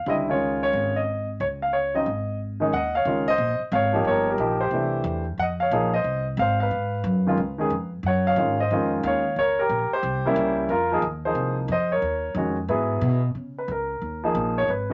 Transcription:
0.06 0.70 C#2 medium
0.06 0.26 D3 medium
0.06 0.26 G3 medium
0.06 0.27 C4 medium
0.06 0.27 E4 medium
0.06 0.14 D#5 medium
0.28 1.00 D#3 medium
0.28 1.00 G#3 medium
0.28 1.00 C#4 medium
0.28 1.01 F4 medium
0.28 0.61 C#5 medium
0.63 0.97 C#5 medium
0.73 1.37 G#1 medium
0.96 1.27 D#5 medium
1.40 2.03 C#2 medium
1.40 1.46 C#5 medium
1.62 1.74 F5 medium
1.73 1.93 C#5 medium
1.94 2.05 C#3 medium
1.94 2.06 F#3 medium
1.94 2.06 C4 medium
1.94 2.06 D#4 medium
1.94 2.37 D#5 medium
2.06 2.70 G#1 medium
2.60 2.71 D#3 medium
2.60 2.72 G#3 medium
2.60 2.72 C#4 medium
2.60 2.72 D#4 medium
2.72 3.05 D#2 medium
2.72 2.94 D#5 medium
2.72 2.95 F#5 loud
2.95 3.27 C#5 medium
2.95 3.29 F5 medium
3.05 3.37 C#2 medium
3.05 3.25 D#3 medium
3.05 3.25 G#3 soft
3.05 3.26 C#4 soft
3.05 3.26 F4 medium
3.28 3.60 C5 medium
3.28 3.59 D#5 loud
3.38 3.58 A#1 medium
3.59 muted upright bass stroke soft
3.72 4.04 G#1 loud
3.72 4.05 C#5 medium
3.72 4.04 F5 medium
3.93 4.36 F3 medium
3.93 4.37 A#3 medium
3.93 4.37 D#4 medium
3.93 4.29 G4 medium
4.05 4.37 G1 medium
4.05 4.28 C#5 medium
4.09 4.27 A#4 medium
4.29 4.39 G4 medium
4.29 4.62 A#4 medium
4.38 4.70 A#1 medium
4.38 4.58 F3 medium
4.38 4.58 A#3 medium
4.38 4.59 D#4 medium
4.38 4.59 G4 medium
4.61 5.24 G4 medium
4.61 5.23 C5 medium
4.71 5.03 C2 medium
4.71 5.23 E3 medium
4.71 5.23 A3 medium
4.71 5.23 D4 soft
4.71 5.24 E4 medium
5.04 5.37 E2 loud
5.38 5.70 F2 medium
5.38 5.44 F#5 loud
5.42 5.47 D#5 medium
5.60 5.92 C#5 medium
5.60 5.94 F5 medium
5.71 6.04 A#1 medium
5.71 5.91 F3 medium
5.71 5.91 A#3 medium
5.71 5.91 D#4 medium
5.71 5.92 G#4 medium
5.94 6.25 C5 medium
5.94 6.24 D#5 medium
6.04 6.36 C2 medium
6.37 6.70 G#1 medium
6.37 6.59 F5 loud
6.42 6.60 C5 medium
6.60 7.90 B4 medium
6.60 7.89 F5 medium
6.71 7.03 G#2 medium
7.04 7.36 F#2 medium
7.26 7.37 D#3 medium
7.26 7.37 G#3 medium
7.26 7.38 C#4 medium
7.26 7.38 F4 medium
7.37 7.70 C#2 medium
7.58 7.70 D#3 medium
7.58 7.70 G#3 medium
7.58 7.70 C#4 medium
7.58 7.71 G#4 medium
7.70 8.02 F2 medium
8.03 8.35 F#2 medium
8.03 8.27 F#5 medium
8.08 8.26 C#5 medium
8.27 8.58 C#5 medium
8.27 8.60 F5 loud
8.36 8.69 G#2 medium
8.36 8.56 D#3 medium
8.36 8.57 G#3 medium
8.36 8.57 C#4 soft
8.36 8.57 F4 medium
8.60 8.92 C5 medium
8.60 8.90 D#5 medium
8.70 9.03 F2 medium
8.70 9.21 D#3 medium
8.70 9.21 G#3 medium
8.70 9.22 C#4 medium
8.70 9.22 F4 medium
9.03 9.36 D#2 medium
9.03 9.37 C#5 medium
9.03 9.39 F5 medium
9.36 9.69 C#2 medium
9.36 9.58 A#4 medium
9.36 9.60 C#5 medium
9.59 9.91 G4 medium
9.59 9.90 A#4 medium
9.69 9.89 A#1 medium
9.90 10.55 C5 loud
9.90 muted upright bass stroke soft
9.95 10.55 G4 medium
10.03 10.35 C2 medium
10.25 10.68 G3 medium
10.25 10.68 A#3 medium
10.25 10.68 C#4 medium
10.25 10.69 E4 medium
10.36 10.68 C#2 medium
10.69 11.01 F2 medium
10.69 11.02 F4 medium
10.69 11.01 A#4 medium
10.91 11.02 F3 medium
10.91 11.03 A#3 medium
10.91 11.03 D#4 medium
10.91 11.03 G#4 medium
11.02 11.34 D#2 medium
11.25 11.67 F3 medium
11.25 11.68 A#3 medium
11.25 11.68 D#4 medium
11.25 11.56 G#4 medium
11.25 11.56 C5 medium
11.35 11.67 C2 medium
11.68 12.01 F2 medium
11.68 11.90 D#5 medium
11.73 11.91 C5 medium
11.92 12.54 A#4 medium
11.92 12.54 C#5 medium
12.02 12.34 D#2 medium
12.35 12.67 F2 medium
12.35 12.55 D#3 medium
12.35 12.55 G#3 medium
12.35 12.56 C#4 medium
12.35 12.56 F#4 medium
12.68 13.01 G#2 medium
12.68 13.19 F#3 medium
12.68 13.19 B3 medium
12.68 13.19 E4 medium
12.68 13.20 G#4 medium
13.01 13.34 B2 medium
13.35 13.67 C#3 medium
13.58 13.69 B4 medium
13.68 14.00 C#2 medium
13.68 14.21 A#4 medium
14.02 14.34 D#2 medium
14.24 14.66 F3 medium
14.24 14.66 A#3 medium
14.24 14.67 D#4 medium
14.24 14.67 G#4 medium
14.35 14.67 A#1 medium
14.58 14.69 C#5 medium
14.68 14.93 G#1 medium
14.68 14.93 B4 medium
14.90 14.93 D#3 medium

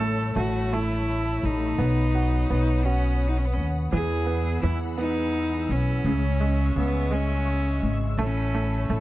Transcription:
0.00 0.32 A1 loud
0.00 0.36 A3 medium
0.00 0.33 A4 loud
0.00 1.75 C#5 medium
0.00 1.77 A5 medium
0.00 3.89 B5 medium
0.00 1.74 E6 medium
0.36 1.39 A1 loud
0.36 0.71 A3 medium
0.36 0.75 F#4 medium
0.73 1.76 A3 medium
0.73 1.47 E4 loud
1.43 1.76 A1 medium
1.43 2.51 D#4 medium
1.78 2.46 B1 loud
1.78 2.49 B3 medium
1.78 3.90 C#5 medium
1.78 3.91 F#5 medium
1.78 3.90 D#6 medium
2.15 2.84 F#4 medium
2.50 3.53 B1 medium
2.50 3.88 B3 medium
2.50 2.86 D#4 medium
2.85 3.30 C#4 medium
2.85 3.89 F#4 medium
3.28 3.39 D#4 medium
3.38 3.47 C#4 medium
3.45 3.55 B3 medium
3.53 3.90 D#2 medium
3.53 3.64 C#4 medium
3.91 4.59 E2 loud
3.91 4.62 E3 medium
3.91 8.14 G#4 medium
3.91 4.59 G#4 medium
3.91 6.03 F#5 medium
3.91 6.03 B5 medium
3.91 9.00 E6 medium
4.26 4.96 B3 medium
4.62 5.66 E2 medium
4.62 6.01 E3 medium
4.62 4.78 E4 medium
4.98 6.02 B3 medium
4.98 5.72 D#4 medium
5.69 6.03 B1 medium
5.69 6.77 C#4 medium
6.04 6.72 C#2 loud
6.04 6.75 C#3 medium
6.04 8.16 E5 medium
6.04 8.16 C#6 medium
6.40 7.09 G#3 medium
6.76 7.79 C#2 medium
6.76 8.14 C#3 medium
6.76 7.14 B3 medium
7.11 8.15 G#3 medium
7.11 7.92 C#4 medium
7.82 8.16 G#1 medium
8.17 8.85 A1 loud
8.17 8.53 A3 medium
8.17 9.00 A4 medium
8.17 9.00 C#5 medium
8.17 9.00 B5 medium
8.21 8.87 C#4 medium
8.55 8.88 A3 medium
8.89 9.00 A1 loud
8.89 9.00 A3 medium

